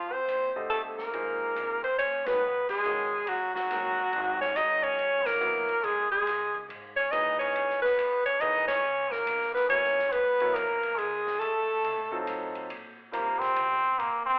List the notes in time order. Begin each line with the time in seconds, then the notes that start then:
Already playing: C2 F3 F4
0.11 C4 C5
0.27 A#1, hi-hat pedal, ride
0.55 D3 A3 G4 C5 D#5, muted upright bass stroke
0.70 G1 A3 A4, ride
0.97 A#3 A#4, snare
1.13 G#1 F3 A#3 D#4 G#4 C5, ride
1.56 C2, hi-hat pedal, ride
1.83 C4 C5, muted upright bass stroke, ride
1.98 D#2 C#4 C#5, hi-hat pedal, ride
2.25 D#3 G#3 B3 C#4 F#4 B4, snare, ride
2.41 C#2
2.69 G#3 G#4, muted upright bass stroke, kick, crash
2.84 B1 D#3 G#3 C#4 F#4 A#4, hi-hat pedal
3.27 A#1 F#3 F#4, ride
3.55 F#3 F#4, snare
3.70 F#1 D#3 G#3 C#4 F#4 A#4, snare, ride
3.98 kick
4.12 G#1, ride
4.41 C#4 C#5, snare
4.54 A1 D#3 G#3 C#4 D#4 F#4 C#5 D#5, hi-hat pedal, ride
4.83 C#4 C#5, ride
4.97 G#1, ride
5.25 A#3 A#4, snare, ride
5.40 A#1 F#3 B3 E4 A#4 C#5, hi-hat pedal
5.67 muted upright bass stroke, ride
5.83 B1 G#3 G#4, ride
6.11 G#3 G#4, muted upright bass stroke
6.26 C#2, snare, ride
6.54 kick
6.68 G#2, ride
6.97 C#4 C#5
7.12 A#2 E3 D#4 G#4 B4 D#5, hi-hat pedal, ride
7.39 C#4 C#5, ride
7.54 F#2, ride
7.70 snare
7.82 B3 B4, muted upright bass stroke, snare
7.97 E2, hi-hat pedal, ride
8.25 C#4 C#5, muted upright bass stroke, ride
8.40 D#2 E3 A#3 D#4 G#4 B4 D#5, ride
8.68 C#4 C#5, snare, ride
8.82 C#2
9.11 A#3 A#4, snare
9.26 B1, hi-hat pedal, ride
9.41 snare
9.54 B3 B4, snare
9.69 A#1 F#3 B3 C#4 E4 A#4 C#5, ride
9.84 snare
9.99 snare
10.12 G#1 B3 B4, ride
10.40 F#3 B3 E4 A#4 C#5, ride
10.54 B1 A#3 A#4, hi-hat pedal, ride
10.83 ride
10.97 C#2 G#3 G#4, ride
11.27 snare
11.40 F2 A3 A4, ride
11.83 C3, ride
11.97 A2
12.11 F2 F#3 C4 D#4 F4 A4
12.26 A2, hi-hat pedal, ride
12.55 ride
12.70 A#2, ride
13.12 D#2 C3 G3 A#3 F4 A#4 C5, hi-hat pedal, ride
13.39 C4, snare, ride
13.56 C#2, ride
13.98 A#1 A#3, ride
14.26 C4, muted upright bass stroke